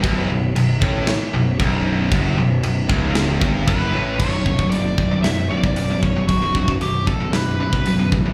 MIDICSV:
0, 0, Header, 1, 7, 480
1, 0, Start_track
1, 0, Key_signature, 2, "minor"
1, 0, Tempo, 522193
1, 31, Time_signature, 4, 2, 24, 8
1, 7660, End_track
2, 0, Start_track
2, 0, Title_t, "Lead electric guitar"
2, 0, Program_c, 0, 29
2, 3377, Note_on_c, 0, 71, 94
2, 3850, Note_on_c, 0, 73, 96
2, 3873, Note_off_c, 0, 71, 0
2, 4319, Note_off_c, 0, 73, 0
2, 4323, Note_on_c, 0, 74, 96
2, 4778, Note_off_c, 0, 74, 0
2, 4802, Note_on_c, 0, 76, 93
2, 5035, Note_off_c, 0, 76, 0
2, 5050, Note_on_c, 0, 74, 97
2, 5528, Note_off_c, 0, 74, 0
2, 5528, Note_on_c, 0, 73, 97
2, 5742, Note_off_c, 0, 73, 0
2, 5771, Note_on_c, 0, 66, 88
2, 6225, Note_off_c, 0, 66, 0
2, 6264, Note_on_c, 0, 67, 83
2, 6489, Note_off_c, 0, 67, 0
2, 6495, Note_on_c, 0, 69, 82
2, 6725, Note_off_c, 0, 69, 0
2, 6742, Note_on_c, 0, 71, 79
2, 6977, Note_off_c, 0, 71, 0
2, 6988, Note_on_c, 0, 71, 81
2, 7437, Note_off_c, 0, 71, 0
2, 7660, End_track
3, 0, Start_track
3, 0, Title_t, "Distorted electric guitar"
3, 0, Program_c, 1, 30
3, 30, Note_on_c, 1, 35, 115
3, 262, Note_off_c, 1, 35, 0
3, 271, Note_on_c, 1, 35, 69
3, 462, Note_off_c, 1, 35, 0
3, 515, Note_on_c, 1, 35, 76
3, 703, Note_off_c, 1, 35, 0
3, 748, Note_on_c, 1, 45, 116
3, 980, Note_off_c, 1, 45, 0
3, 1232, Note_on_c, 1, 35, 70
3, 1420, Note_off_c, 1, 35, 0
3, 1470, Note_on_c, 1, 35, 111
3, 1938, Note_off_c, 1, 35, 0
3, 1947, Note_on_c, 1, 42, 110
3, 2177, Note_off_c, 1, 42, 0
3, 2187, Note_on_c, 1, 35, 73
3, 2376, Note_off_c, 1, 35, 0
3, 2424, Note_on_c, 1, 35, 68
3, 2615, Note_off_c, 1, 35, 0
3, 2660, Note_on_c, 1, 37, 109
3, 3132, Note_off_c, 1, 37, 0
3, 3136, Note_on_c, 1, 43, 106
3, 3371, Note_off_c, 1, 43, 0
3, 3377, Note_on_c, 1, 42, 107
3, 3611, Note_off_c, 1, 42, 0
3, 3618, Note_on_c, 1, 45, 96
3, 3851, Note_off_c, 1, 45, 0
3, 3855, Note_on_c, 1, 35, 81
3, 3858, Note_on_c, 1, 42, 94
3, 3865, Note_on_c, 1, 47, 95
3, 3963, Note_off_c, 1, 35, 0
3, 3965, Note_off_c, 1, 42, 0
3, 3968, Note_off_c, 1, 47, 0
3, 3980, Note_on_c, 1, 42, 68
3, 3988, Note_on_c, 1, 35, 58
3, 4092, Note_off_c, 1, 42, 0
3, 4094, Note_off_c, 1, 35, 0
3, 4103, Note_on_c, 1, 42, 62
3, 4105, Note_on_c, 1, 35, 61
3, 4214, Note_off_c, 1, 42, 0
3, 4215, Note_off_c, 1, 35, 0
3, 4225, Note_on_c, 1, 42, 78
3, 4226, Note_on_c, 1, 35, 58
3, 4333, Note_off_c, 1, 35, 0
3, 4337, Note_off_c, 1, 42, 0
3, 4344, Note_on_c, 1, 35, 64
3, 4348, Note_on_c, 1, 42, 82
3, 4559, Note_off_c, 1, 35, 0
3, 4561, Note_off_c, 1, 42, 0
3, 4575, Note_on_c, 1, 42, 72
3, 4580, Note_on_c, 1, 35, 65
3, 4689, Note_off_c, 1, 42, 0
3, 4693, Note_off_c, 1, 35, 0
3, 4700, Note_on_c, 1, 42, 66
3, 4704, Note_on_c, 1, 35, 60
3, 4802, Note_off_c, 1, 35, 0
3, 4809, Note_off_c, 1, 42, 0
3, 4813, Note_on_c, 1, 35, 69
3, 4820, Note_on_c, 1, 42, 73
3, 5034, Note_off_c, 1, 35, 0
3, 5038, Note_off_c, 1, 42, 0
3, 5062, Note_on_c, 1, 42, 73
3, 5063, Note_on_c, 1, 35, 56
3, 5168, Note_off_c, 1, 42, 0
3, 5171, Note_off_c, 1, 35, 0
3, 5179, Note_on_c, 1, 42, 74
3, 5182, Note_on_c, 1, 35, 59
3, 5286, Note_off_c, 1, 35, 0
3, 5292, Note_off_c, 1, 42, 0
3, 5297, Note_on_c, 1, 35, 62
3, 5303, Note_on_c, 1, 42, 71
3, 5412, Note_off_c, 1, 42, 0
3, 5416, Note_off_c, 1, 35, 0
3, 5423, Note_on_c, 1, 42, 69
3, 5427, Note_on_c, 1, 35, 62
3, 5531, Note_off_c, 1, 42, 0
3, 5538, Note_off_c, 1, 35, 0
3, 5542, Note_on_c, 1, 42, 74
3, 5549, Note_on_c, 1, 35, 54
3, 5651, Note_off_c, 1, 42, 0
3, 5653, Note_off_c, 1, 35, 0
3, 5662, Note_on_c, 1, 42, 78
3, 5664, Note_on_c, 1, 35, 61
3, 5775, Note_off_c, 1, 35, 0
3, 5777, Note_off_c, 1, 42, 0
3, 5786, Note_on_c, 1, 35, 76
3, 5788, Note_on_c, 1, 42, 79
3, 5889, Note_off_c, 1, 42, 0
3, 5895, Note_off_c, 1, 35, 0
3, 5900, Note_on_c, 1, 42, 71
3, 5906, Note_on_c, 1, 35, 56
3, 6011, Note_off_c, 1, 42, 0
3, 6015, Note_off_c, 1, 35, 0
3, 6022, Note_on_c, 1, 42, 68
3, 6026, Note_on_c, 1, 35, 55
3, 6127, Note_off_c, 1, 42, 0
3, 6130, Note_off_c, 1, 35, 0
3, 6138, Note_on_c, 1, 42, 74
3, 6141, Note_on_c, 1, 35, 65
3, 6245, Note_off_c, 1, 35, 0
3, 6250, Note_off_c, 1, 42, 0
3, 6256, Note_on_c, 1, 35, 68
3, 6261, Note_on_c, 1, 42, 84
3, 6478, Note_off_c, 1, 35, 0
3, 6480, Note_off_c, 1, 42, 0
3, 6502, Note_on_c, 1, 42, 76
3, 6504, Note_on_c, 1, 35, 55
3, 6609, Note_off_c, 1, 42, 0
3, 6614, Note_off_c, 1, 35, 0
3, 6620, Note_on_c, 1, 42, 73
3, 6625, Note_on_c, 1, 35, 52
3, 6730, Note_off_c, 1, 35, 0
3, 6735, Note_off_c, 1, 42, 0
3, 6741, Note_on_c, 1, 35, 66
3, 6746, Note_on_c, 1, 42, 78
3, 6961, Note_off_c, 1, 35, 0
3, 6964, Note_off_c, 1, 42, 0
3, 6985, Note_on_c, 1, 42, 71
3, 6988, Note_on_c, 1, 35, 58
3, 7098, Note_off_c, 1, 42, 0
3, 7100, Note_off_c, 1, 35, 0
3, 7109, Note_on_c, 1, 42, 72
3, 7111, Note_on_c, 1, 35, 64
3, 7219, Note_off_c, 1, 35, 0
3, 7223, Note_off_c, 1, 42, 0
3, 7230, Note_on_c, 1, 35, 70
3, 7234, Note_on_c, 1, 42, 75
3, 7334, Note_off_c, 1, 42, 0
3, 7337, Note_off_c, 1, 35, 0
3, 7345, Note_on_c, 1, 42, 72
3, 7348, Note_on_c, 1, 35, 61
3, 7452, Note_off_c, 1, 42, 0
3, 7456, Note_off_c, 1, 35, 0
3, 7463, Note_on_c, 1, 42, 74
3, 7467, Note_on_c, 1, 35, 65
3, 7576, Note_off_c, 1, 42, 0
3, 7578, Note_off_c, 1, 35, 0
3, 7587, Note_on_c, 1, 42, 72
3, 7589, Note_on_c, 1, 35, 61
3, 7660, Note_off_c, 1, 35, 0
3, 7660, Note_off_c, 1, 42, 0
3, 7660, End_track
4, 0, Start_track
4, 0, Title_t, "Picked electric bass"
4, 0, Program_c, 2, 34
4, 33, Note_on_c, 2, 23, 99
4, 254, Note_off_c, 2, 23, 0
4, 270, Note_on_c, 2, 23, 81
4, 492, Note_off_c, 2, 23, 0
4, 508, Note_on_c, 2, 23, 78
4, 731, Note_off_c, 2, 23, 0
4, 751, Note_on_c, 2, 33, 98
4, 972, Note_off_c, 2, 33, 0
4, 1231, Note_on_c, 2, 23, 85
4, 1451, Note_off_c, 2, 23, 0
4, 1467, Note_on_c, 2, 23, 96
4, 1911, Note_off_c, 2, 23, 0
4, 1944, Note_on_c, 2, 30, 92
4, 2166, Note_off_c, 2, 30, 0
4, 2180, Note_on_c, 2, 23, 83
4, 2404, Note_off_c, 2, 23, 0
4, 2422, Note_on_c, 2, 23, 74
4, 2644, Note_off_c, 2, 23, 0
4, 2659, Note_on_c, 2, 25, 94
4, 3106, Note_off_c, 2, 25, 0
4, 3138, Note_on_c, 2, 31, 99
4, 3362, Note_off_c, 2, 31, 0
4, 3375, Note_on_c, 2, 30, 90
4, 3601, Note_off_c, 2, 30, 0
4, 3632, Note_on_c, 2, 33, 95
4, 3848, Note_off_c, 2, 33, 0
4, 3853, Note_on_c, 2, 23, 91
4, 4067, Note_off_c, 2, 23, 0
4, 4095, Note_on_c, 2, 23, 81
4, 4308, Note_off_c, 2, 23, 0
4, 4338, Note_on_c, 2, 30, 75
4, 4550, Note_off_c, 2, 30, 0
4, 4575, Note_on_c, 2, 23, 71
4, 4788, Note_off_c, 2, 23, 0
4, 4816, Note_on_c, 2, 23, 90
4, 5029, Note_off_c, 2, 23, 0
4, 5052, Note_on_c, 2, 23, 81
4, 5267, Note_off_c, 2, 23, 0
4, 5298, Note_on_c, 2, 23, 82
4, 5722, Note_off_c, 2, 23, 0
4, 5781, Note_on_c, 2, 23, 93
4, 5993, Note_off_c, 2, 23, 0
4, 6019, Note_on_c, 2, 23, 76
4, 6233, Note_off_c, 2, 23, 0
4, 6249, Note_on_c, 2, 23, 76
4, 6468, Note_off_c, 2, 23, 0
4, 6504, Note_on_c, 2, 23, 77
4, 6716, Note_off_c, 2, 23, 0
4, 6735, Note_on_c, 2, 23, 79
4, 6952, Note_off_c, 2, 23, 0
4, 6972, Note_on_c, 2, 23, 81
4, 7190, Note_off_c, 2, 23, 0
4, 7213, Note_on_c, 2, 23, 86
4, 7431, Note_off_c, 2, 23, 0
4, 7467, Note_on_c, 2, 33, 83
4, 7660, Note_off_c, 2, 33, 0
4, 7660, End_track
5, 0, Start_track
5, 0, Title_t, "Muted distorted electric guitar strokes"
5, 994, Note_on_c, 9, 29, 59
5, 1086, Note_off_c, 9, 29, 0
5, 7660, End_track
6, 0, Start_track
6, 0, Title_t, "Muted picked electric bass strokes"
6, 1000, Note_on_c, 9, 29, 40
6, 1092, Note_off_c, 9, 29, 0
6, 7660, End_track
7, 0, Start_track
7, 0, Title_t, "Drums"
7, 34, Note_on_c, 9, 36, 107
7, 36, Note_on_c, 9, 49, 62
7, 125, Note_off_c, 9, 36, 0
7, 128, Note_off_c, 9, 49, 0
7, 516, Note_on_c, 9, 49, 69
7, 608, Note_off_c, 9, 49, 0
7, 752, Note_on_c, 9, 36, 105
7, 844, Note_off_c, 9, 36, 0
7, 986, Note_on_c, 9, 38, 121
7, 986, Note_on_c, 9, 49, 65
7, 1078, Note_off_c, 9, 38, 0
7, 1078, Note_off_c, 9, 49, 0
7, 1467, Note_on_c, 9, 49, 62
7, 1468, Note_on_c, 9, 36, 105
7, 1559, Note_off_c, 9, 49, 0
7, 1560, Note_off_c, 9, 36, 0
7, 1944, Note_on_c, 9, 49, 60
7, 1946, Note_on_c, 9, 36, 112
7, 2036, Note_off_c, 9, 49, 0
7, 2037, Note_off_c, 9, 36, 0
7, 2421, Note_on_c, 9, 49, 61
7, 2513, Note_off_c, 9, 49, 0
7, 2661, Note_on_c, 9, 36, 108
7, 2753, Note_off_c, 9, 36, 0
7, 2899, Note_on_c, 9, 38, 113
7, 2899, Note_on_c, 9, 49, 66
7, 2991, Note_off_c, 9, 38, 0
7, 2991, Note_off_c, 9, 49, 0
7, 3139, Note_on_c, 9, 36, 102
7, 3231, Note_off_c, 9, 36, 0
7, 3378, Note_on_c, 9, 49, 65
7, 3379, Note_on_c, 9, 36, 102
7, 3470, Note_off_c, 9, 49, 0
7, 3471, Note_off_c, 9, 36, 0
7, 3855, Note_on_c, 9, 57, 99
7, 3858, Note_on_c, 9, 36, 106
7, 3947, Note_off_c, 9, 57, 0
7, 3950, Note_off_c, 9, 36, 0
7, 4098, Note_on_c, 9, 36, 81
7, 4190, Note_off_c, 9, 36, 0
7, 4218, Note_on_c, 9, 36, 72
7, 4310, Note_off_c, 9, 36, 0
7, 4337, Note_on_c, 9, 46, 54
7, 4429, Note_off_c, 9, 46, 0
7, 4578, Note_on_c, 9, 36, 83
7, 4670, Note_off_c, 9, 36, 0
7, 4819, Note_on_c, 9, 38, 109
7, 4819, Note_on_c, 9, 46, 52
7, 4911, Note_off_c, 9, 38, 0
7, 4911, Note_off_c, 9, 46, 0
7, 5180, Note_on_c, 9, 36, 82
7, 5272, Note_off_c, 9, 36, 0
7, 5297, Note_on_c, 9, 46, 50
7, 5389, Note_off_c, 9, 46, 0
7, 5540, Note_on_c, 9, 36, 73
7, 5632, Note_off_c, 9, 36, 0
7, 5779, Note_on_c, 9, 46, 50
7, 5780, Note_on_c, 9, 36, 101
7, 5871, Note_off_c, 9, 46, 0
7, 5872, Note_off_c, 9, 36, 0
7, 6019, Note_on_c, 9, 36, 79
7, 6111, Note_off_c, 9, 36, 0
7, 6140, Note_on_c, 9, 36, 76
7, 6232, Note_off_c, 9, 36, 0
7, 6260, Note_on_c, 9, 46, 47
7, 6352, Note_off_c, 9, 46, 0
7, 6501, Note_on_c, 9, 36, 83
7, 6593, Note_off_c, 9, 36, 0
7, 6740, Note_on_c, 9, 38, 98
7, 6740, Note_on_c, 9, 46, 53
7, 6832, Note_off_c, 9, 38, 0
7, 6832, Note_off_c, 9, 46, 0
7, 7103, Note_on_c, 9, 36, 82
7, 7195, Note_off_c, 9, 36, 0
7, 7222, Note_on_c, 9, 46, 52
7, 7314, Note_off_c, 9, 46, 0
7, 7465, Note_on_c, 9, 36, 78
7, 7557, Note_off_c, 9, 36, 0
7, 7660, End_track
0, 0, End_of_file